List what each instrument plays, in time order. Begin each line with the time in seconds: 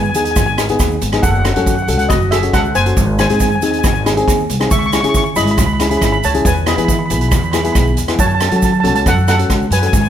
Already playing: upright bass G#2
0.03 steel pan G#5
0.10 steel pan G#5
0.14 upright bass D#2, nylon-string guitar B3 D#4 G#4, steel pan G#5, closed hi-hat, shaker
0.25 steel pan G#5, closed hi-hat, shaker
0.31 steel pan G#5
0.36 upright bass G#1, steel pan G#5, kick, cross-stick, closed hi-hat, shaker
0.46 steel pan G#5, shaker
0.58 nylon-string guitar B3 D#4 G#4, cross-stick, closed hi-hat, shaker
0.69 nylon-string guitar B3 D#4 G#4, closed hi-hat
0.79 upright bass D#2, kick, cross-stick, closed hi-hat, shaker
0.91 shaker
1.01 upright bass G#1, closed hi-hat, shaker
1.12 nylon-string guitar B3 D#4 G#4, cross-stick, closed hi-hat
1.23 upright bass F#1, steel pan A4 F#5, kick, closed hi-hat, shaker
1.31 steel pan F#5
1.35 steel pan F#5, shaker
1.45 nylon-string guitar C#4 F#4 A4, cross-stick, closed hi-hat, shaker
1.54 upright bass F#2, nylon-string guitar C#4 F#4 A4, steel pan F#5, closed hi-hat, shaker
1.61 steel pan F#5
1.66 steel pan F#5, kick, closed hi-hat, shaker
1.75 steel pan F#5, shaker
1.82 steel pan F#5
1.88 upright bass C#2, nylon-string guitar C#4 F#4 A4, steel pan F#5, closed hi-hat, shaker
1.98 steel pan F#5, closed hi-hat, shaker
2.09 upright bass F#1, steel pan F#4 D#5, kick, cross-stick, closed hi-hat, shaker
2.21 shaker
2.31 nylon-string guitar C#4 F#4 A4, steel pan G#4 E5, cross-stick, closed hi-hat, shaker
2.43 nylon-string guitar C#4 F#4 A4, closed hi-hat
2.53 upright bass C#2, steel pan A4 F#5, kick, cross-stick, closed hi-hat, shaker
2.65 shaker
2.75 upright bass F#1, steel pan C5 G#5, closed hi-hat, shaker
2.86 nylon-string guitar C#4 F#4 A4, closed hi-hat
2.97 upright bass G#1, kick, closed hi-hat, shaker
3.19 nylon-string guitar C4 D#4 G#4, steel pan C5 G#5, cross-stick, closed hi-hat, shaker
3.27 upright bass G#2, nylon-string guitar C4 D#4 G#4, steel pan G#5, closed hi-hat, shaker
3.34 steel pan G#5
3.40 steel pan G#5, kick, closed hi-hat, shaker
3.49 steel pan G#5, shaker
3.55 steel pan G#5
3.62 upright bass D#2, nylon-string guitar C4 D#4 G#4, steel pan G#5, closed hi-hat, shaker
3.71 steel pan G#5, closed hi-hat
3.79 steel pan G#5
3.84 upright bass G#1, steel pan G#5, kick, cross-stick, closed hi-hat, shaker
3.94 steel pan G#5, shaker
4.05 nylon-string guitar C4 D#4 G#4, cross-stick, closed hi-hat, shaker
4.16 nylon-string guitar C4 D#4 G#4, closed hi-hat, shaker
4.28 upright bass D#2, kick, cross-stick, closed hi-hat, shaker
4.40 shaker
4.49 upright bass C2, closed hi-hat, shaker
4.60 nylon-string guitar C4 D#4 G#4, cross-stick, closed hi-hat, shaker
4.71 upright bass C#2, steel pan E5 C#6, kick, closed hi-hat, shaker
4.79 steel pan C#6, shaker
4.86 steel pan C#6
4.92 nylon-string guitar C#4 E4 G#4, steel pan C#6, cross-stick, closed hi-hat, shaker
5.01 upright bass C#3, nylon-string guitar C#4 E4 G#4, steel pan C#6, closed hi-hat, shaker
5.09 steel pan C#6
5.14 steel pan C#6, kick, closed hi-hat, shaker
5.24 steel pan C#6, shaker
5.36 upright bass G#1, nylon-string guitar C#4 E4 G#4, steel pan D#5 B5, closed hi-hat, shaker
5.43 steel pan B5, closed hi-hat, shaker
5.51 steel pan B5
5.58 upright bass C#2, steel pan B5, kick, cross-stick, closed hi-hat, shaker
5.66 steel pan B5, shaker
5.73 steel pan B5
5.80 nylon-string guitar C#4 E4 G#4, steel pan B5, cross-stick, closed hi-hat, shaker
5.89 nylon-string guitar C#4 E4 G#4, steel pan B5, closed hi-hat
5.97 upright bass G#1, steel pan B5
6.02 steel pan B5, kick, cross-stick, closed hi-hat, shaker
6.12 steel pan B5, shaker
6.23 upright bass C#2, steel pan C#5 A5, closed hi-hat, shaker
6.34 nylon-string guitar C#4 E4 G#4, closed hi-hat
6.45 upright bass E2, steel pan B4 G#5, kick, closed hi-hat, shaker
6.57 shaker
6.66 nylon-string guitar B3 E4 G#4, steel pan D#5 B5, cross-stick, closed hi-hat, shaker
6.76 upright bass E3, nylon-string guitar B3 E4 G#4, steel pan B5, closed hi-hat, shaker
6.84 steel pan B5, kick, closed hi-hat
6.89 steel pan B5, shaker
6.99 steel pan B5
7.06 steel pan B5
7.10 upright bass B1, nylon-string guitar B3 E4 G#4, steel pan B5, closed hi-hat, shaker
7.21 steel pan B5, closed hi-hat, shaker
7.29 upright bass E2, steel pan B5, kick, cross-stick, closed hi-hat, shaker
7.36 steel pan B5
7.44 steel pan B5
7.52 nylon-string guitar B3 E4 G#4, steel pan B5, cross-stick, closed hi-hat, shaker
7.58 steel pan B5
7.64 nylon-string guitar B3 E4 G#4, steel pan B5, closed hi-hat
7.72 upright bass B1, steel pan B5, kick, cross-stick, closed hi-hat, shaker
7.80 steel pan B5
7.87 shaker
7.97 upright bass E2, closed hi-hat, shaker
8.08 nylon-string guitar B3 E4 G#4, cross-stick, closed hi-hat
8.19 upright bass F#2, steel pan C#5 A5, kick, closed hi-hat, shaker
8.26 steel pan A5, shaker
8.35 steel pan A5
8.40 nylon-string guitar C#4 F#4 A4, steel pan A5, cross-stick, closed hi-hat, shaker
8.49 upright bass F#3, nylon-string guitar C#4 F#4 A4, steel pan A5, closed hi-hat, shaker
8.56 steel pan A5
8.62 steel pan A5, kick, closed hi-hat, shaker
8.73 steel pan A5, shaker
8.80 upright bass C#2, nylon-string guitar C#4 F#4 A4, steel pan A5
8.84 steel pan A5, closed hi-hat
8.95 steel pan A5, closed hi-hat, shaker
9.06 upright bass F#2, steel pan A4 F#5, kick, cross-stick, closed hi-hat, shaker
9.18 shaker
9.27 nylon-string guitar C#4 F#4 A4, steel pan A4 F#5, cross-stick, closed hi-hat, shaker
9.39 nylon-string guitar C#4 F#4 A4, closed hi-hat
9.50 upright bass C#2, kick, cross-stick, closed hi-hat, shaker
9.62 shaker
9.71 upright bass F#2, steel pan B4 G#5, closed hi-hat, shaker
9.79 nylon-string guitar C#4 F#4 A4, steel pan G#5, closed hi-hat
9.87 steel pan G#5
9.93 upright bass G#2, steel pan G#5, kick, closed hi-hat, shaker
10.01 steel pan G#5, shaker